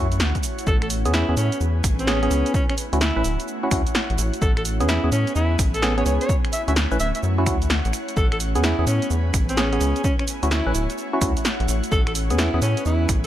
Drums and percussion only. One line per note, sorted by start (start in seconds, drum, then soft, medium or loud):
0.12 closed hi-hat medium
0.12 shaker soft
0.20 snare loud
0.20 shaker soft
0.35 kick medium
0.35 closed hi-hat medium
0.35 shaker soft
0.43 open hi-hat loud
0.43 shaker medium
0.59 closed hi-hat medium
0.59 shaker soft
0.67 kick loud
0.67 shaker soft
0.82 finger snap medium
0.82 closed hi-hat soft
0.90 open hi-hat loud
0.90 shaker medium
1.05 closed hi-hat medium
1.05 shaker soft
1.14 snare loud
1.14 shaker soft
1.37 open hi-hat loud
1.37 shaker medium
1.52 closed hi-hat medium
1.52 shaker soft
1.61 shaker soft
1.84 finger snap medium
1.84 kick loud
1.84 open hi-hat loud
1.84 shaker medium
1.99 closed hi-hat medium
1.99 shaker soft
2.07 snare loud
2.07 shaker soft
2.23 closed hi-hat medium
2.31 open hi-hat loud
2.31 shaker medium
2.46 closed hi-hat medium
2.46 shaker soft
2.54 kick loud
2.54 shaker soft
2.70 finger snap medium
2.70 closed hi-hat soft
2.78 open hi-hat loud
2.78 shaker medium
2.93 closed hi-hat medium
2.93 shaker soft
3.01 snare loud
3.01 shaker soft
3.24 open hi-hat loud
3.24 shaker medium
3.40 closed hi-hat medium
3.40 shaker soft
3.48 shaker soft
3.71 finger snap medium
3.71 kick loud
3.71 open hi-hat loud
3.71 shaker medium
3.87 closed hi-hat medium
3.87 shaker soft
3.95 snare loud
3.95 shaker soft
4.10 closed hi-hat medium
4.18 open hi-hat medium
4.18 shaker medium
4.34 closed hi-hat medium
4.34 shaker soft
4.42 kick loud
4.42 shaker soft
4.57 finger snap medium
4.57 closed hi-hat soft
4.65 open hi-hat loud
4.65 shaker medium
4.80 closed hi-hat medium
4.80 shaker soft
4.89 snare loud
4.89 shaker soft
5.12 open hi-hat medium
5.12 shaker medium
5.27 closed hi-hat medium
5.27 shaker soft
5.36 shaker soft
5.59 finger snap medium
5.59 kick loud
5.59 open hi-hat loud
5.59 shaker medium
5.74 closed hi-hat medium
5.74 shaker soft
5.82 snare loud
5.82 shaker soft
5.98 closed hi-hat medium
6.06 open hi-hat medium
6.06 shaker medium
6.21 closed hi-hat medium
6.21 shaker soft
6.29 kick loud
6.29 shaker soft
6.45 finger snap medium
6.45 closed hi-hat soft
6.53 open hi-hat loud
6.53 shaker medium
6.68 closed hi-hat medium
6.68 shaker soft
6.76 snare loud
6.76 shaker soft
6.92 shaker soft
7.00 open hi-hat medium
7.00 shaker medium
7.15 closed hi-hat medium
7.15 shaker soft
7.23 shaker soft
7.46 finger snap medium
7.46 kick loud
7.46 open hi-hat loud
7.46 shaker medium
7.62 closed hi-hat medium
7.62 shaker soft
7.70 snare loud
7.70 shaker soft
7.85 closed hi-hat medium
7.85 shaker soft
7.93 finger snap medium
7.93 open hi-hat medium
7.93 shaker medium
8.09 closed hi-hat medium
8.09 shaker soft
8.17 kick loud
8.17 shaker soft
8.32 finger snap medium
8.32 closed hi-hat soft
8.40 open hi-hat loud
8.40 shaker medium
8.55 closed hi-hat medium
8.55 shaker soft
8.64 snare loud
8.64 shaker soft
8.87 open hi-hat medium
8.87 shaker medium
9.02 closed hi-hat medium
9.02 shaker soft
9.10 shaker soft
9.34 finger snap medium
9.34 kick loud
9.34 open hi-hat loud
9.34 shaker medium
9.49 closed hi-hat medium
9.49 shaker soft
9.57 snare loud
9.57 shaker soft
9.73 closed hi-hat medium
9.81 open hi-hat medium
9.81 shaker medium
9.96 closed hi-hat medium
9.96 shaker soft
10.04 kick loud
10.04 shaker soft
10.19 finger snap medium
10.19 closed hi-hat soft
10.28 open hi-hat loud
10.28 shaker medium
10.43 closed hi-hat medium
10.43 shaker soft
10.51 snare loud
10.51 shaker soft
10.75 open hi-hat loud
10.75 shaker medium
10.90 closed hi-hat medium
10.90 shaker soft
10.98 shaker soft
11.21 finger snap medium
11.21 kick loud
11.21 open hi-hat loud
11.21 shaker medium
11.37 closed hi-hat medium
11.37 shaker soft
11.45 snare loud
11.45 shaker soft
11.60 closed hi-hat medium
11.68 open hi-hat medium
11.68 shaker medium
11.84 closed hi-hat medium
11.84 shaker soft
11.92 kick loud
11.92 shaker soft
12.07 finger snap medium
12.07 closed hi-hat soft
12.15 open hi-hat loud
12.15 shaker medium
12.30 closed hi-hat medium
12.30 shaker soft
12.39 snare loud
12.39 shaker soft
12.62 open hi-hat loud
12.62 shaker medium
12.77 closed hi-hat medium
12.77 shaker soft
12.85 shaker soft
13.09 finger snap medium
13.09 kick loud
13.09 open hi-hat loud
13.09 shaker medium